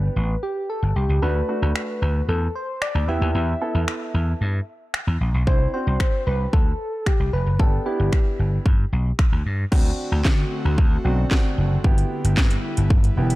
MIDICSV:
0, 0, Header, 1, 6, 480
1, 0, Start_track
1, 0, Key_signature, 1, "major"
1, 0, Tempo, 530973
1, 1107, Time_signature, 4, 2, 24, 8
1, 12071, End_track
2, 0, Start_track
2, 0, Title_t, "Soft synth lead"
2, 0, Program_c, 0, 80
2, 0, Note_on_c, 0, 71, 110
2, 388, Note_on_c, 0, 67, 88
2, 401, Note_off_c, 0, 71, 0
2, 629, Note_on_c, 0, 69, 90
2, 643, Note_off_c, 0, 67, 0
2, 868, Note_on_c, 0, 67, 86
2, 881, Note_off_c, 0, 69, 0
2, 1102, Note_off_c, 0, 67, 0
2, 1107, Note_on_c, 0, 71, 104
2, 2067, Note_on_c, 0, 69, 88
2, 2081, Note_off_c, 0, 71, 0
2, 2310, Note_on_c, 0, 72, 94
2, 2323, Note_off_c, 0, 69, 0
2, 2549, Note_on_c, 0, 74, 99
2, 2563, Note_off_c, 0, 72, 0
2, 2789, Note_on_c, 0, 76, 99
2, 2803, Note_off_c, 0, 74, 0
2, 4228, Note_off_c, 0, 76, 0
2, 4945, Note_on_c, 0, 72, 111
2, 5169, Note_off_c, 0, 72, 0
2, 5187, Note_on_c, 0, 72, 111
2, 5666, Note_on_c, 0, 71, 100
2, 5680, Note_off_c, 0, 72, 0
2, 5900, Note_off_c, 0, 71, 0
2, 5905, Note_on_c, 0, 69, 99
2, 6387, Note_on_c, 0, 67, 92
2, 6401, Note_off_c, 0, 69, 0
2, 6628, Note_on_c, 0, 71, 101
2, 6642, Note_off_c, 0, 67, 0
2, 6868, Note_on_c, 0, 69, 98
2, 6882, Note_off_c, 0, 71, 0
2, 7101, Note_off_c, 0, 69, 0
2, 7106, Note_on_c, 0, 67, 85
2, 7790, Note_off_c, 0, 67, 0
2, 12071, End_track
3, 0, Start_track
3, 0, Title_t, "Grand piano"
3, 0, Program_c, 1, 0
3, 0, Note_on_c, 1, 59, 72
3, 0, Note_on_c, 1, 62, 69
3, 0, Note_on_c, 1, 67, 80
3, 238, Note_off_c, 1, 59, 0
3, 239, Note_off_c, 1, 62, 0
3, 240, Note_off_c, 1, 67, 0
3, 1103, Note_on_c, 1, 57, 70
3, 1105, Note_on_c, 1, 62, 65
3, 1108, Note_on_c, 1, 66, 78
3, 1309, Note_off_c, 1, 57, 0
3, 1309, Note_off_c, 1, 62, 0
3, 1311, Note_off_c, 1, 66, 0
3, 1343, Note_on_c, 1, 57, 71
3, 1345, Note_on_c, 1, 62, 64
3, 1347, Note_on_c, 1, 66, 79
3, 2158, Note_off_c, 1, 57, 0
3, 2160, Note_off_c, 1, 62, 0
3, 2161, Note_off_c, 1, 66, 0
3, 2781, Note_on_c, 1, 59, 75
3, 2784, Note_on_c, 1, 64, 70
3, 2786, Note_on_c, 1, 67, 84
3, 3191, Note_off_c, 1, 59, 0
3, 3192, Note_off_c, 1, 64, 0
3, 3193, Note_off_c, 1, 67, 0
3, 3264, Note_on_c, 1, 59, 69
3, 3266, Note_on_c, 1, 64, 67
3, 3268, Note_on_c, 1, 69, 78
3, 4079, Note_off_c, 1, 59, 0
3, 4080, Note_off_c, 1, 64, 0
3, 4081, Note_off_c, 1, 69, 0
3, 4944, Note_on_c, 1, 60, 76
3, 4947, Note_on_c, 1, 62, 67
3, 4949, Note_on_c, 1, 64, 81
3, 5149, Note_off_c, 1, 60, 0
3, 5150, Note_off_c, 1, 62, 0
3, 5151, Note_off_c, 1, 64, 0
3, 5184, Note_on_c, 1, 60, 74
3, 5186, Note_on_c, 1, 62, 66
3, 5189, Note_on_c, 1, 66, 80
3, 5999, Note_off_c, 1, 60, 0
3, 6000, Note_off_c, 1, 62, 0
3, 6001, Note_off_c, 1, 66, 0
3, 6866, Note_on_c, 1, 59, 73
3, 6866, Note_on_c, 1, 62, 67
3, 6869, Note_on_c, 1, 67, 78
3, 7070, Note_off_c, 1, 59, 0
3, 7070, Note_off_c, 1, 62, 0
3, 7071, Note_off_c, 1, 67, 0
3, 7100, Note_on_c, 1, 59, 75
3, 7104, Note_on_c, 1, 62, 70
3, 7105, Note_on_c, 1, 64, 81
3, 7917, Note_off_c, 1, 59, 0
3, 7919, Note_off_c, 1, 62, 0
3, 7919, Note_off_c, 1, 64, 0
3, 8783, Note_on_c, 1, 60, 88
3, 8787, Note_on_c, 1, 62, 79
3, 8788, Note_on_c, 1, 66, 96
3, 9598, Note_off_c, 1, 60, 0
3, 9600, Note_off_c, 1, 62, 0
3, 9601, Note_off_c, 1, 66, 0
3, 9984, Note_on_c, 1, 60, 80
3, 9987, Note_on_c, 1, 62, 71
3, 9989, Note_on_c, 1, 66, 88
3, 10189, Note_off_c, 1, 60, 0
3, 10191, Note_off_c, 1, 62, 0
3, 10192, Note_off_c, 1, 66, 0
3, 10226, Note_on_c, 1, 60, 84
3, 10230, Note_on_c, 1, 62, 78
3, 10232, Note_on_c, 1, 66, 95
3, 10633, Note_off_c, 1, 60, 0
3, 10635, Note_off_c, 1, 62, 0
3, 10636, Note_off_c, 1, 66, 0
3, 10708, Note_on_c, 1, 59, 86
3, 10710, Note_on_c, 1, 64, 78
3, 10713, Note_on_c, 1, 67, 97
3, 11521, Note_off_c, 1, 59, 0
3, 11522, Note_off_c, 1, 64, 0
3, 11523, Note_off_c, 1, 67, 0
3, 11907, Note_on_c, 1, 59, 81
3, 11909, Note_on_c, 1, 64, 74
3, 11911, Note_on_c, 1, 67, 85
3, 12071, Note_off_c, 1, 59, 0
3, 12071, Note_off_c, 1, 64, 0
3, 12071, Note_off_c, 1, 67, 0
3, 12071, End_track
4, 0, Start_track
4, 0, Title_t, "Analog synth pad"
4, 0, Program_c, 2, 89
4, 8788, Note_on_c, 2, 57, 71
4, 8788, Note_on_c, 2, 60, 73
4, 8788, Note_on_c, 2, 66, 84
4, 8790, Note_on_c, 2, 50, 81
4, 10688, Note_off_c, 2, 60, 0
4, 10689, Note_off_c, 2, 57, 0
4, 10689, Note_off_c, 2, 66, 0
4, 10705, Note_on_c, 2, 55, 68
4, 10705, Note_on_c, 2, 64, 84
4, 10707, Note_on_c, 2, 59, 69
4, 12071, Note_off_c, 2, 50, 0
4, 12071, Note_off_c, 2, 55, 0
4, 12071, Note_off_c, 2, 59, 0
4, 12071, Note_off_c, 2, 64, 0
4, 12071, End_track
5, 0, Start_track
5, 0, Title_t, "Slap bass"
5, 0, Program_c, 3, 36
5, 146, Note_on_c, 3, 33, 85
5, 311, Note_off_c, 3, 33, 0
5, 746, Note_on_c, 3, 31, 89
5, 829, Note_off_c, 3, 31, 0
5, 866, Note_on_c, 3, 36, 87
5, 949, Note_off_c, 3, 36, 0
5, 987, Note_on_c, 3, 37, 82
5, 1070, Note_off_c, 3, 37, 0
5, 1105, Note_on_c, 3, 38, 107
5, 1270, Note_off_c, 3, 38, 0
5, 1467, Note_on_c, 3, 38, 94
5, 1549, Note_off_c, 3, 38, 0
5, 1826, Note_on_c, 3, 38, 88
5, 1991, Note_off_c, 3, 38, 0
5, 2065, Note_on_c, 3, 40, 102
5, 2230, Note_off_c, 3, 40, 0
5, 2666, Note_on_c, 3, 38, 85
5, 2749, Note_off_c, 3, 38, 0
5, 2787, Note_on_c, 3, 40, 89
5, 2869, Note_off_c, 3, 40, 0
5, 2906, Note_on_c, 3, 39, 84
5, 2989, Note_off_c, 3, 39, 0
5, 3027, Note_on_c, 3, 40, 108
5, 3191, Note_off_c, 3, 40, 0
5, 3387, Note_on_c, 3, 40, 89
5, 3469, Note_off_c, 3, 40, 0
5, 3745, Note_on_c, 3, 40, 86
5, 3911, Note_off_c, 3, 40, 0
5, 3986, Note_on_c, 3, 43, 93
5, 4151, Note_off_c, 3, 43, 0
5, 4586, Note_on_c, 3, 40, 82
5, 4668, Note_off_c, 3, 40, 0
5, 4707, Note_on_c, 3, 34, 85
5, 4789, Note_off_c, 3, 34, 0
5, 4827, Note_on_c, 3, 35, 81
5, 4910, Note_off_c, 3, 35, 0
5, 5306, Note_on_c, 3, 36, 97
5, 5389, Note_off_c, 3, 36, 0
5, 5666, Note_on_c, 3, 36, 89
5, 5831, Note_off_c, 3, 36, 0
5, 5904, Note_on_c, 3, 38, 101
5, 6070, Note_off_c, 3, 38, 0
5, 6507, Note_on_c, 3, 36, 82
5, 6589, Note_off_c, 3, 36, 0
5, 6627, Note_on_c, 3, 29, 86
5, 6709, Note_off_c, 3, 29, 0
5, 6748, Note_on_c, 3, 30, 83
5, 6830, Note_off_c, 3, 30, 0
5, 7229, Note_on_c, 3, 31, 92
5, 7311, Note_off_c, 3, 31, 0
5, 7587, Note_on_c, 3, 31, 76
5, 7752, Note_off_c, 3, 31, 0
5, 7826, Note_on_c, 3, 43, 99
5, 7991, Note_off_c, 3, 43, 0
5, 8069, Note_on_c, 3, 35, 90
5, 8233, Note_off_c, 3, 35, 0
5, 8428, Note_on_c, 3, 38, 82
5, 8510, Note_off_c, 3, 38, 0
5, 8549, Note_on_c, 3, 43, 81
5, 8713, Note_off_c, 3, 43, 0
5, 8787, Note_on_c, 3, 38, 100
5, 8951, Note_off_c, 3, 38, 0
5, 9147, Note_on_c, 3, 38, 93
5, 9229, Note_off_c, 3, 38, 0
5, 9265, Note_on_c, 3, 50, 94
5, 9430, Note_off_c, 3, 50, 0
5, 9628, Note_on_c, 3, 38, 79
5, 9710, Note_off_c, 3, 38, 0
5, 9987, Note_on_c, 3, 35, 87
5, 10152, Note_off_c, 3, 35, 0
5, 10468, Note_on_c, 3, 30, 86
5, 10632, Note_off_c, 3, 30, 0
5, 10708, Note_on_c, 3, 31, 97
5, 10872, Note_off_c, 3, 31, 0
5, 11068, Note_on_c, 3, 31, 95
5, 11150, Note_off_c, 3, 31, 0
5, 11186, Note_on_c, 3, 43, 95
5, 11351, Note_off_c, 3, 43, 0
5, 11550, Note_on_c, 3, 31, 81
5, 11631, Note_off_c, 3, 31, 0
5, 11665, Note_on_c, 3, 31, 99
5, 11830, Note_off_c, 3, 31, 0
5, 11909, Note_on_c, 3, 28, 97
5, 12071, Note_off_c, 3, 28, 0
5, 12071, End_track
6, 0, Start_track
6, 0, Title_t, "Drums"
6, 1587, Note_on_c, 9, 26, 115
6, 1677, Note_off_c, 9, 26, 0
6, 2547, Note_on_c, 9, 26, 111
6, 2637, Note_off_c, 9, 26, 0
6, 3507, Note_on_c, 9, 26, 110
6, 3597, Note_off_c, 9, 26, 0
6, 4465, Note_on_c, 9, 26, 112
6, 4556, Note_off_c, 9, 26, 0
6, 4946, Note_on_c, 9, 36, 119
6, 5037, Note_off_c, 9, 36, 0
6, 5424, Note_on_c, 9, 26, 109
6, 5424, Note_on_c, 9, 36, 118
6, 5514, Note_off_c, 9, 26, 0
6, 5515, Note_off_c, 9, 36, 0
6, 5905, Note_on_c, 9, 36, 113
6, 5995, Note_off_c, 9, 36, 0
6, 6386, Note_on_c, 9, 26, 107
6, 6386, Note_on_c, 9, 36, 114
6, 6476, Note_off_c, 9, 26, 0
6, 6476, Note_off_c, 9, 36, 0
6, 6866, Note_on_c, 9, 36, 114
6, 6957, Note_off_c, 9, 36, 0
6, 7345, Note_on_c, 9, 36, 124
6, 7346, Note_on_c, 9, 26, 112
6, 7436, Note_off_c, 9, 36, 0
6, 7437, Note_off_c, 9, 26, 0
6, 7826, Note_on_c, 9, 36, 116
6, 7916, Note_off_c, 9, 36, 0
6, 8307, Note_on_c, 9, 26, 109
6, 8307, Note_on_c, 9, 36, 114
6, 8397, Note_off_c, 9, 26, 0
6, 8398, Note_off_c, 9, 36, 0
6, 8786, Note_on_c, 9, 49, 95
6, 8787, Note_on_c, 9, 36, 115
6, 8876, Note_off_c, 9, 49, 0
6, 8877, Note_off_c, 9, 36, 0
6, 9266, Note_on_c, 9, 36, 122
6, 9266, Note_on_c, 9, 39, 116
6, 9273, Note_on_c, 9, 38, 89
6, 9356, Note_off_c, 9, 36, 0
6, 9356, Note_off_c, 9, 39, 0
6, 9363, Note_off_c, 9, 38, 0
6, 9745, Note_on_c, 9, 36, 121
6, 9836, Note_off_c, 9, 36, 0
6, 10227, Note_on_c, 9, 36, 114
6, 10227, Note_on_c, 9, 39, 104
6, 10234, Note_on_c, 9, 38, 89
6, 10317, Note_off_c, 9, 36, 0
6, 10317, Note_off_c, 9, 39, 0
6, 10324, Note_off_c, 9, 38, 0
6, 10707, Note_on_c, 9, 36, 119
6, 10797, Note_off_c, 9, 36, 0
6, 10829, Note_on_c, 9, 42, 50
6, 10920, Note_off_c, 9, 42, 0
6, 11071, Note_on_c, 9, 42, 83
6, 11161, Note_off_c, 9, 42, 0
6, 11186, Note_on_c, 9, 36, 120
6, 11187, Note_on_c, 9, 39, 118
6, 11194, Note_on_c, 9, 38, 89
6, 11276, Note_off_c, 9, 36, 0
6, 11277, Note_off_c, 9, 39, 0
6, 11285, Note_off_c, 9, 38, 0
6, 11305, Note_on_c, 9, 42, 55
6, 11395, Note_off_c, 9, 42, 0
6, 11545, Note_on_c, 9, 42, 74
6, 11636, Note_off_c, 9, 42, 0
6, 11665, Note_on_c, 9, 36, 118
6, 11756, Note_off_c, 9, 36, 0
6, 11787, Note_on_c, 9, 42, 45
6, 11878, Note_off_c, 9, 42, 0
6, 12024, Note_on_c, 9, 42, 65
6, 12071, Note_off_c, 9, 42, 0
6, 12071, End_track
0, 0, End_of_file